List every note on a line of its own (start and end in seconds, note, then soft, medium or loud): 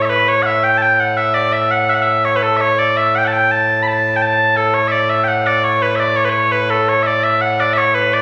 0.00 8.22 A2 medium
0.00 0.05 E5 medium
0.05 0.10 C#5 medium
0.10 0.28 B4 medium
0.28 0.42 C#5 loud
0.42 0.64 E5 medium
0.42 0.46 F#5 medium
0.64 0.78 G5 medium
0.78 0.82 A5 medium
0.82 1.00 G5 medium
1.00 1.17 F#5 medium
1.17 1.34 E5 medium
1.34 1.53 D5 loud
1.53 1.71 E5 medium
1.71 1.89 F#5 medium
1.89 1.94 E5 loud
1.94 2.02 F#5 medium
2.02 2.25 E5 medium
2.25 2.36 C#5 medium
2.36 2.42 B4 medium
2.42 2.57 A4 loud
2.57 2.61 E5 loud
2.61 2.79 C#5 loud
2.79 2.97 D5 medium
2.97 3.15 E5 loud
3.15 3.18 F#5 medium
3.15 3.25 G5 medium
3.25 3.27 F#5 medium
3.25 3.33 A5 medium
3.33 3.52 G5 loud
3.52 3.83 A5 loud
3.83 3.88 B5 medium
3.88 4.16 A5 loud
4.16 4.22 G5 medium
4.22 4.57 A5 loud
4.57 4.74 A4 medium
4.74 4.88 C#5 medium
4.88 5.10 D5 medium
4.88 4.92 E5 medium
5.10 5.24 E5 medium
5.24 5.28 G5 medium
5.28 5.46 F#5 medium
5.46 5.64 D5 medium
5.64 5.82 C#5 medium
5.82 5.96 B4 medium
5.96 6.16 D5 medium
5.96 6.00 E5 medium
6.16 6.25 C#5 medium
6.25 6.30 B4 medium
6.30 6.52 C#5 medium
6.52 6.70 B4 medium
6.70 6.89 A4 medium
6.89 7.03 C#5 medium
7.03 7.24 D5 medium
7.03 7.07 E5 medium
7.24 7.41 E5 medium
7.41 7.60 F#5 medium
7.60 7.73 D5 medium
7.73 7.78 E5 loud
7.78 7.95 C#5 loud
7.95 8.14 B4 medium
8.14 8.22 D5 medium